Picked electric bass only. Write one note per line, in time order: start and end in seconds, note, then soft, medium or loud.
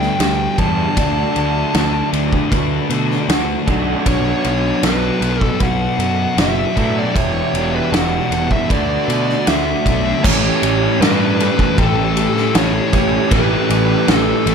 0.20 0.46 D2 medium
0.58 0.85 E2 medium
0.97 1.24 D2 medium
1.37 1.63 D2 medium
1.75 2.01 D2 medium
2.13 2.40 D2 loud
2.52 2.78 D2 loud
2.90 3.16 B2 medium
3.29 3.55 D2 medium
3.68 3.94 B1 medium
4.06 4.33 B1 loud
4.45 4.71 B1 medium
4.83 5.10 B1 medium
5.21 5.48 B1 medium
5.60 5.87 B1 loud
5.99 6.25 F#2 medium
6.37 6.64 F#1 loud
6.77 7.03 A2 medium
7.15 7.42 E1 medium
7.54 7.80 E1 medium
7.92 8.19 E1 loud
8.30 8.57 E1 medium
8.70 8.96 D2 medium
9.08 9.35 B2 medium
9.47 9.73 D2 medium
9.86 10.12 B1 medium
10.25 10.48 A1 loud
10.63 10.87 A1 medium
11.00 11.49 G2 loud
11.78 12.26 A1 medium
12.55 12.79 A1 loud
12.93 13.17 A1 medium
13.31 13.55 A1 medium
13.70 13.94 A1 medium
14.08 14.32 A1 medium
14.46 14.55 A1 loud